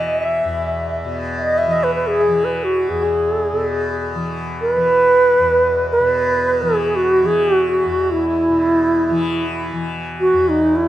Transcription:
Already playing: E2 B2 E3 D#5
0.09 D#5
0.21 E5
0.45 E2
1.04 B2
1.38 D#5 E5
1.55 D#5 E5
1.67 E3 E5
1.72 D#5
1.84 B4
1.95 B4
2.07 G#4
2.20 G#4
2.28 E3
2.45 B4
2.64 F#4
2.76 F#4
2.89 E2 G#4
3.01 G#4
3.31 A4
3.42 G#4
3.53 B2
4.15 E3
4.61 A#4
4.72 B4
4.76 E3
5.39 E2
5.92 B4
6.00 B2 B4
6.62 E3 G#4
6.75 G#4
6.96 F#4
7.08 F#4
7.23 E3 G#4
7.39 G#4
7.55 F#4
7.70 F#4
7.83 E2 F#4
8.12 E4
8.25 E4
8.49 B2
9.10 E3
9.72 E3
10.20 F#4
10.32 E2 F#4
10.49 D#4
10.59 D#4
10.76 E4

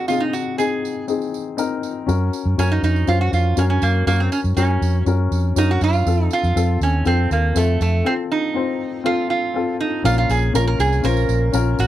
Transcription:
Already playing: C3 C4 D#4 G#4 A#4
0.08 C3 C4 D#4 F4 G#4, tambourine
0.20 D#4
0.33 F#4, tambourine
0.58 C4 D#4 G#4, tambourine
0.85 tambourine
1.08 C4 D#4 G#4, tambourine
1.22 tambourine
1.34 tambourine
1.57 C4 D#4 A#4, tambourine
1.83 tambourine
2.06 F#2 C#4 F#4 A#4, tambourine
2.33 tambourine
2.45 F#2
2.58 F#2 C#4 F#4 A#4, tambourine
2.72 D#4
2.83 F2 D#4, tambourine
2.96 tambourine
3.07 F#2 C#4 F4 F#4 C5, tambourine
3.21 F#4
3.32 F2 F4, tambourine
3.56 F#2 C#4 F#4 A#4, tambourine
3.70 C#4
3.82 F#2 A#3, tambourine
4.07 F#2 A#3 C#4 F#4 A#4, tambourine
4.20 C4
4.32 C#4, tambourine
4.44 F#2, tambourine
4.57 F#2 C#4 F#4 A#4, tambourine
4.81 F2, tambourine
5.06 F#2 C#4 F#4 A#4, tambourine
5.31 F2, tambourine
5.56 F#2 C#4 D#4 F#4 A#4, tambourine
5.71 F#4
5.81 F#2 F4, tambourine
5.93 tambourine
6.05 F2 C4 F4 A4, tambourine
6.31 F4, tambourine
6.43 F2, tambourine
6.55 F2 C4 F4 A4, tambourine
6.81 D#2 C#4, tambourine
7.05 F2 C4 F4 A4, tambourine
7.31 D#2 A#3, tambourine
7.54 F2 A3 C4 F4 A4, tambourine
7.81 F2 A3, tambourine
8.04 C4 F4 A4
8.32 D#4
8.54 C4 F4 C5
9.04 C4 F4 A4
9.30 F4
9.54 C4 F4 A4
9.81 D#4
10.04 A#1 A#2 C#4 F4 A#4, tambourine
10.18 F4
10.29 A#1 G#4, tambourine
10.53 A#1 C#4 F4 A#4, tambourine
10.67 A#4
10.79 C2 G#4, tambourine
10.92 tambourine
11.03 A#1 C#4 F4 A#4 C5, tambourine
11.17 tambourine
11.29 A#1, tambourine
11.52 A#1 C#4 F4 A#4, tambourine
11.79 A1 F#4, tambourine

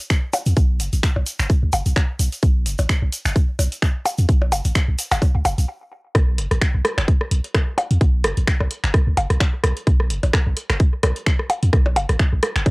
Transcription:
0.10 finger snap, kick, closed hi-hat, shaker
0.33 closed hi-hat, percussion blips, shaker
0.46 E2, closed hi-hat, shaker
0.57 B1, kick, closed hi-hat, shaker
0.80 F#1, closed hi-hat, shaker
0.93 A1, closed hi-hat, shaker
1.03 finger snap, kick, closed hi-hat, shaker
1.16 B1, percussion blips
1.26 closed hi-hat, shaker
1.39 F#1, finger snap, closed hi-hat, shaker
1.50 kick, closed hi-hat, shaker
1.63 C#2
1.72 F#1, closed hi-hat, percussion blips, shaker
1.86 B1, closed hi-hat, shaker
1.96 finger snap, kick, closed hi-hat, percussion blips, shaker
2.19 B1, closed hi-hat, shaker
2.32 closed hi-hat, shaker
2.42 B1, kick, closed hi-hat, shaker
2.66 F#1, closed hi-hat, shaker
2.78 A1, closed hi-hat, percussion blips, shaker
2.89 finger snap, kick, closed hi-hat, shaker
3.02 B1
3.12 closed hi-hat, shaker
3.25 F#1, finger snap, closed hi-hat, shaker
3.36 kick, closed hi-hat, shaker
3.59 B1, closed hi-hat, percussion blips, shaker
3.72 closed hi-hat, shaker
3.82 finger snap, kick, closed hi-hat, shaker
4.06 closed hi-hat, percussion blips, shaker
4.18 E2, closed hi-hat, shaker
4.29 B1, kick, closed hi-hat, shaker
4.42 percussion blips
4.52 F#1, closed hi-hat, percussion blips, shaker
4.65 A1, closed hi-hat, shaker
4.75 finger snap, kick, closed hi-hat, shaker
4.88 B1
4.99 closed hi-hat, shaker
5.11 F#1, finger snap, closed hi-hat, percussion blips, shaker
5.22 kick, closed hi-hat, percussion blips, shaker
5.35 C#2
5.45 F#1, closed hi-hat, percussion blips, shaker
5.58 B1, closed hi-hat, shaker
6.15 B1, kick, cross-stick, closed hi-hat, percussion blips
6.38 F#1, closed hi-hat
6.51 A1, cross-stick, closed hi-hat
6.61 finger snap, kick, closed hi-hat
6.74 B1
6.85 cross-stick, closed hi-hat
6.98 F#1, finger snap, closed hi-hat, percussion blips
7.08 kick, closed hi-hat
7.21 cross-stick
7.31 B1, closed hi-hat
7.44 closed hi-hat
7.54 finger snap, kick, cross-stick, closed hi-hat
7.78 closed hi-hat, percussion blips
7.91 E2, closed hi-hat
8.01 B1, kick, closed hi-hat
8.24 F#1, cross-stick, closed hi-hat
8.37 A1, closed hi-hat
8.47 finger snap, kick, closed hi-hat
8.60 B1, cross-stick, percussion blips
8.71 closed hi-hat
8.84 F#1, finger snap, closed hi-hat
8.94 kick, cross-stick, closed hi-hat
9.07 C#2
9.17 F#1, closed hi-hat, percussion blips
9.30 B1, cross-stick, closed hi-hat
9.40 finger snap, kick, closed hi-hat, percussion blips
9.64 B1, cross-stick, closed hi-hat
9.77 closed hi-hat
9.87 B1, kick, closed hi-hat
10.00 cross-stick
10.10 F#1, closed hi-hat
10.23 A1, closed hi-hat, percussion blips
10.33 finger snap, kick, cross-stick, closed hi-hat
10.47 B1
10.57 closed hi-hat
10.70 F#1, finger snap, cross-stick, closed hi-hat
10.80 kick, closed hi-hat
11.03 B1, cross-stick, closed hi-hat, percussion blips
11.16 closed hi-hat
11.26 finger snap, kick, closed hi-hat
11.39 cross-stick
11.50 closed hi-hat, percussion blips
11.63 E2, closed hi-hat
11.73 B1, kick, cross-stick, closed hi-hat
11.86 percussion blips
11.96 F#1, closed hi-hat, percussion blips
12.09 A1, cross-stick, closed hi-hat
12.19 finger snap, kick, closed hi-hat
12.33 B1
12.43 cross-stick, closed hi-hat
12.56 F#1, finger snap, closed hi-hat
12.66 kick, closed hi-hat, percussion blips

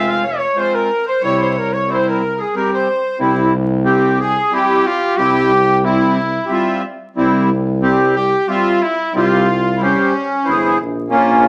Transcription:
Already playing: F1 G#3 C4 F4 E5
0.07 F5
0.11 F5
0.23 C#5
0.27 C#5 E5
0.37 C#5
0.55 G#3 C4 F4 C5
0.60 C5
0.73 A#4
1.06 C5
1.21 C2 C3 G3 E4 C#5
1.41 C5
1.50 C5
1.58 A#4
1.73 C#5
1.87 G3 C4 E4 C5
1.93 A#4 C5
1.98 C5
2.07 A#4
2.35 G#4 A#4
2.41 G#4
2.54 G3 C4 G4 A#4
2.73 C5
3.19 C2 G3 C4 E4
3.84 G3 C4 G4
4.19 G#4
4.51 G3 C4 E4 G4
4.87 F4
5.17 C2 G3 C4 E4 G4
5.84 G3 C4 E4
6.45 G4
6.49 G3 C4 F4 E5
7.16 C2 G3 C4 E4
7.81 G3 C4 G4
8.15 G4
8.48 G3 C4 F4 E5
8.81 E4
9.13 C2 G3 C4 F4 G4
9.76 G3 E4
9.81 C#4 G4 C5
10.44 G1 E3 E4 C5
10.49 G#4
10.81 A#1
11.10 A#3 C#4 F4
11.14 A#1

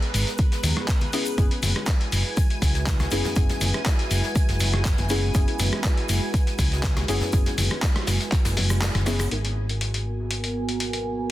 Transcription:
Already playing: G#3 B3 D#4 F#4 G#4 A#4 B4 A#5
0.02 closed hi-hat
0.14 G#1, open hi-hat, shaker
0.27 snare, closed hi-hat
0.38 kick, closed hi-hat, high conga, shaker
0.52 snare, closed hi-hat
0.63 D#2, open hi-hat, high bongo, low conga, shaker
0.77 cross-stick, closed hi-hat
0.88 kick, clap, closed hi-hat, shaker
1.01 closed hi-hat, high conga
1.13 G#3 B3 C#4 E4 F#4 G#4 B4, open hi-hat, shaker
1.26 closed hi-hat, shaker
1.37 F#1 B3 C#4 E4 G#4 G#5, kick, closed hi-hat, shaker
1.51 closed hi-hat
1.62 F#1, open hi-hat, high bongo, high conga, shaker
1.76 cross-stick, closed hi-hat
1.87 kick, snare, clap, closed hi-hat, shaker
2.01 closed hi-hat
2.12 F#1, open hi-hat, shaker
2.37 kick, closed hi-hat, high conga, shaker
2.50 closed hi-hat
2.62 C#2, kick, open hi-hat, shaker
2.75 snare, closed hi-hat
2.86 kick, snare, clap, closed hi-hat, shaker
2.99 cross-stick, snare, closed hi-hat, high bongo, high conga
3.11 F#1 B3 C#4 E4 G#4, open hi-hat, shaker
3.25 snare, low conga
3.36 F#1 B3 C#4 E4 G#4, kick, closed hi-hat, shaker
3.49 snare, closed hi-hat, low conga
3.61 F#1, open hi-hat, high bongo, high conga, shaker
3.74 cross-stick, closed hi-hat
3.86 kick, snare, clap, closed hi-hat, shaker
3.99 closed hi-hat
4.11 F#1, open hi-hat, shaker
4.24 snare
4.35 kick, closed hi-hat, high conga, shaker
4.49 F#1, snare, closed hi-hat
4.60 open hi-hat, high bongo, low conga, shaker
4.74 cross-stick, closed hi-hat
4.85 kick, snare, clap, closed hi-hat, shaker
4.98 F#1, snare, closed hi-hat, high conga
5.09 B3 C#4 E4 G#4, open hi-hat, shaker
5.34 F#1 B3 C#4 E4 G#4, kick, closed hi-hat, shaker
5.48 closed hi-hat
5.59 F#1, open hi-hat, high bongo, high conga, shaker
5.73 cross-stick, closed hi-hat
5.84 kick, snare, clap, closed hi-hat, shaker
5.97 closed hi-hat
6.09 F#1, open hi-hat, shaker
6.34 kick, closed hi-hat, high conga, shaker
6.47 snare, closed hi-hat
6.59 C#2, kick, open hi-hat, shaker
6.72 snare, closed hi-hat
6.83 kick, snare, clap, closed hi-hat, shaker
6.97 cross-stick, snare, closed hi-hat, high bongo, high conga
7.08 F#1 B3 C#4 E4 G#4, open hi-hat, shaker
7.21 snare, low conga
7.33 F#1 B3 C#4 E4 G#4, kick, closed hi-hat, shaker
7.46 snare, closed hi-hat, low conga
7.58 F#1, open hi-hat, high bongo, high conga, shaker
7.71 cross-stick, closed hi-hat
7.82 kick, snare, clap, closed hi-hat, shaker
7.96 cross-stick, closed hi-hat
8.07 F#1, snare, open hi-hat, shaker
8.20 snare, closed hi-hat
8.32 kick, clap, closed hi-hat, high conga, shaker
8.45 F#1, snare, closed hi-hat, shaker
8.57 snare, open hi-hat, high bongo, low conga
8.70 cross-stick, closed hi-hat, shaker
8.82 cross-stick, snare, clap, closed hi-hat, shaker
8.95 F#1, cross-stick, snare, closed hi-hat, high conga
9.06 B3 C#4 E4 G#4, cross-stick, snare, open hi-hat, shaker
9.19 cross-stick, snare, closed hi-hat, shaker
9.31 G#1 B3 D#4 F#4 A#4 G#5, closed hi-hat
9.45 closed hi-hat
9.69 closed hi-hat
9.81 closed hi-hat
9.94 closed hi-hat
10.31 closed hi-hat
10.44 closed hi-hat
10.69 closed hi-hat
10.80 closed hi-hat
10.93 closed hi-hat

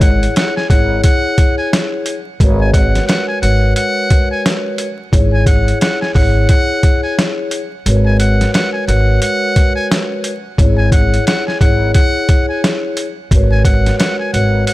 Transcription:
Already playing: G#1 E4 G#4 C#5
0.01 F#5, kick, closed hi-hat
0.23 closed hi-hat
0.36 F#5, snare, closed hi-hat
0.57 G#5, snare
0.69 G#1 E4 G#4 C#5 F#5, kick, closed hi-hat
1.04 F#5, kick, closed hi-hat
1.38 kick, closed hi-hat
1.58 G#5
1.73 snare, closed hi-hat
2.06 closed hi-hat
2.40 G#1 G#3 F#4 A#4 B4 C#5, kick, closed hi-hat
2.61 G#5
2.74 F#5, kick, closed hi-hat
2.95 snare, closed hi-hat
3.07 F#5, snare, closed hi-hat
3.28 G#5
3.42 G#1 G#3 F#4 A#4 B4 C#5 F#5, closed hi-hat
3.76 F#5, closed hi-hat
4.10 kick, closed hi-hat
4.31 G#5
4.46 snare, closed hi-hat
4.78 closed hi-hat
5.12 G#1 E4 G#4 C#5, kick, closed hi-hat
5.34 G#5
5.46 F#5, kick, closed hi-hat
5.68 closed hi-hat
5.81 F#5, snare, closed hi-hat
6.01 G#5, snare
6.15 G#1 E4 G#4 C#5 F#5, kick, open hi-hat
6.49 F#5, kick, closed hi-hat
6.83 kick, closed hi-hat
7.04 G#5
7.19 snare, closed hi-hat
7.51 closed hi-hat
7.86 G#1 G#3 F#4 A#4 B4 C#5, closed hi-hat
8.06 G#5
8.20 F#5, closed hi-hat
8.41 snare, closed hi-hat
8.54 F#5, snare, closed hi-hat
8.73 G#5
8.87 G#1 G#3 F#4 A#4 B4 C#5 F#5, closed hi-hat
9.22 F#5, closed hi-hat
9.56 kick, closed hi-hat
9.76 G#5
9.91 snare, closed hi-hat
10.24 closed hi-hat
10.58 G#1 E4 G#4 C#5, kick, closed hi-hat
10.78 G#5
10.92 F#5, kick, closed hi-hat
11.14 closed hi-hat
11.27 F#5, snare, closed hi-hat
11.47 G#5, snare
11.60 G#1 E4 G#4 C#5 F#5, kick, closed hi-hat
11.94 F#5, kick, closed hi-hat
12.29 kick, closed hi-hat
12.49 G#5
12.64 snare, closed hi-hat
12.97 closed hi-hat
13.31 G#1 G#3 F#4 A#4 B4 C#5, kick, closed hi-hat
13.52 G#5
13.65 F#5, kick, closed hi-hat
13.86 snare, closed hi-hat
13.99 F#5, snare, closed hi-hat
14.20 G#5
14.33 G#1 G#3 F#4 A#4 B4 C#5 F#5, closed hi-hat
14.67 F#5, closed hi-hat

